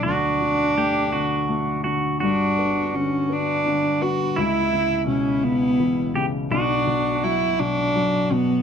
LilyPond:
<<
  \new Staff \with { instrumentName = "Pedal steel guitar" } { \time 6/8 \key g \lydian \tempo 4. = 56 fis'4 g'8 fis'4 fis'8 | fis'2. | e'2~ e'8 g'8 | fis'2. | }
  \new Staff \with { instrumentName = "Cello" } { \time 6/8 \key g \lydian d'2~ d'8 r8 | d'4 cis'8 d'4 fis'8 | e'4 cis'8 b4 r8 | d'4 e'8 d'4 b8 | }
  \new Staff \with { instrumentName = "Grand piano" } { \clef bass \time 6/8 \key g \lydian <d, d>8 d8 a8 d8 a8 d8 | <g,, g,>8 b8 d8 b8 d8 b8 | cis,8 cis8 b,8 cis8 e8 cis8 | <b,, b,>8 b,8 fis8 b,8 fis8 b,8 | }
>>